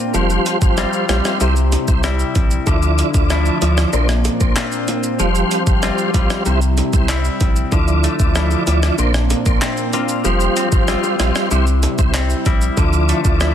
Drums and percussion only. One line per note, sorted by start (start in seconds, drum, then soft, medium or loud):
0.14 high bongo medium
0.14 shaker medium
0.30 shaker medium
0.46 closed hi-hat medium
0.46 shaker medium
0.62 kick medium
0.62 shaker medium
0.78 cross-stick medium
0.78 shaker medium
0.93 shaker soft
1.09 cross-stick loud
1.09 closed hi-hat medium
1.09 low bongo medium
1.09 shaker medium
1.25 cross-stick medium
1.25 shaker medium
1.41 high bongo medium
1.41 shaker medium
1.57 shaker soft
1.72 closed hi-hat medium
1.72 high bongo medium
1.72 shaker medium
1.88 kick loud
1.88 shaker medium
2.04 cross-stick loud
2.04 shaker medium
2.20 shaker soft
2.35 kick loud
2.35 closed hi-hat medium
2.35 low bongo medium
2.35 shaker soft
2.51 shaker medium
2.66 kick loud
2.66 high bongo medium
2.66 shaker medium
2.83 shaker medium
2.99 closed hi-hat medium
2.99 shaker medium
3.14 kick medium
3.14 shaker medium
3.30 cross-stick medium
3.30 shaker medium
3.46 shaker soft
3.62 closed hi-hat medium
3.62 low bongo medium
3.62 shaker medium
3.78 cross-stick loud
3.78 shaker medium
3.93 high bongo medium
3.93 shaker medium
4.09 cross-stick medium
4.09 shaker soft
4.25 closed hi-hat medium
4.25 high bongo medium
4.25 shaker medium
4.41 kick loud
4.41 shaker medium
4.56 cross-stick loud
4.56 clap loud
4.56 shaker medium
4.72 shaker medium
4.88 closed hi-hat medium
4.88 low bongo medium
4.88 shaker soft
5.04 shaker medium
5.19 high bongo medium
5.19 shaker medium
5.35 shaker medium
5.51 closed hi-hat medium
5.51 shaker medium
5.67 kick medium
5.67 shaker medium
5.83 cross-stick loud
5.83 shaker medium
5.99 shaker medium
6.14 kick medium
6.14 closed hi-hat medium
6.14 low bongo medium
6.14 shaker medium
6.30 cross-stick medium
6.30 shaker medium
6.46 high bongo medium
6.46 shaker medium
6.62 shaker soft
6.78 closed hi-hat medium
6.78 high bongo medium
6.78 shaker medium
6.93 kick medium
6.93 shaker medium
7.09 cross-stick loud
7.09 clap loud
7.09 shaker medium
7.25 shaker medium
7.41 kick loud
7.41 closed hi-hat medium
7.41 low bongo medium
7.41 shaker soft
7.56 shaker medium
7.72 kick loud
7.72 high bongo medium
7.72 shaker medium
7.88 shaker medium
8.04 closed hi-hat medium
8.04 shaker medium
8.20 kick loud
8.20 shaker medium
8.36 cross-stick loud
8.36 shaker medium
8.51 high bongo medium
8.51 shaker medium
8.67 closed hi-hat medium
8.67 low bongo medium
8.67 shaker medium
8.83 cross-stick medium
8.83 shaker medium
8.98 high bongo medium
8.98 shaker medium
9.14 cross-stick medium
9.14 shaker soft
9.30 closed hi-hat medium
9.30 high bongo medium
9.30 shaker medium
9.46 kick loud
9.46 shaker medium
9.62 cross-stick loud
9.62 clap loud
9.62 shaker medium
9.78 shaker soft
9.93 closed hi-hat medium
9.93 low bongo medium
9.93 shaker soft
10.09 shaker medium
10.24 high bongo medium
10.24 shaker medium
10.41 shaker medium
10.57 closed hi-hat medium
10.57 shaker medium
10.72 kick medium
10.72 shaker medium
10.88 cross-stick medium
10.88 shaker medium
11.04 high bongo medium
11.04 shaker soft
11.20 cross-stick loud
11.20 closed hi-hat medium
11.20 low bongo medium
11.20 shaker medium
11.36 cross-stick medium
11.36 shaker medium
11.51 high bongo medium
11.51 shaker medium
11.67 shaker soft
11.83 closed hi-hat medium
11.83 high bongo medium
11.83 shaker medium
11.99 kick medium
11.99 shaker medium
12.14 cross-stick loud
12.14 clap loud
12.14 shaker medium
12.30 shaker medium
12.46 kick loud
12.46 closed hi-hat medium
12.46 low bongo medium
12.46 shaker soft
12.62 shaker medium
12.77 kick loud
12.77 high bongo medium
12.77 shaker medium
12.93 shaker medium
13.09 closed hi-hat medium
13.09 shaker medium
13.25 kick medium
13.25 shaker medium
13.41 cross-stick medium
13.41 shaker medium